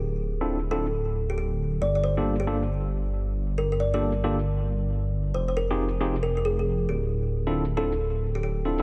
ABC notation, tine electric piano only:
X:1
M:4/4
L:1/16
Q:"Swing 16ths" 1/4=136
K:Gm
V:1 name="Tine electric piano"
z3 [CD=EFA]2 z [CDEFA] z8 z | z3 [B,DFGA]2 z [B,DFGA] z8 z | z3 [B,DFGA]2 z [B,DFGA] z8 z | z3 [CEFG_A]2 z [CEFGA] z8 z |
z3 [CD=EFA]2 z [CDEFA] z6 z [CDEFA] [CDEFA] |]